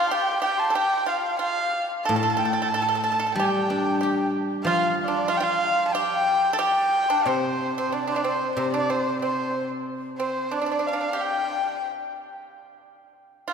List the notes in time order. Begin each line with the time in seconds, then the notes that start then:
Already playing: F4 F5
0.08 G4 A5
0.12 G5
0.42 G4 G5
0.57 A5 C6
0.62 A5
0.70 A4 G5
0.75 G4 G5
1.06 F4 F5
1.39 F4 F5
2.05 A2 A4 A5
2.14 A4 G5
2.20 A4 A5
2.30 A4
2.37 A4 G5
2.45 A4
2.53 A4
2.62 A4
2.68 A5
2.74 A4
2.82 A4
2.88 A4
2.95 A4
3.03 A4 A5
3.12 A4
3.19 A4
3.27 A4
3.35 G3 G5
3.40 G4
3.48 A5
3.54 G5
3.62 A5
3.68 D4 G5
3.79 A5
3.85 G5
3.94 A5
4.00 G4 G5
4.64 F3 F4 F5
5.05 D4 D5
5.09 D5
5.28 F4 F5
5.37 F4 G5
5.43 F5
5.87 A5
5.92 G4 G5
6.53 A4
6.58 G4 G5
6.62 G5
7.08 D4 A5 C6
7.17 F5 G5
7.23 C3 C4 D5
7.27 C5
7.77 C4 C5
7.92 D4 D5
8.07 D4 C5 D5
8.12 D4 D5
8.17 D5
8.24 C4 C5
8.55 C3 C4 C5 D5
8.73 D4 D5
8.90 C4 C5
9.18 D5
9.22 C4 C5
9.27 C5
10.19 C4 C5
10.51 D4 D5
10.61 D4
10.66 D4
10.72 D4
10.79 D4
10.87 D4 F5
10.93 D4
11.01 D4
11.13 G4 G5
11.21 G5
13.48 F4 F5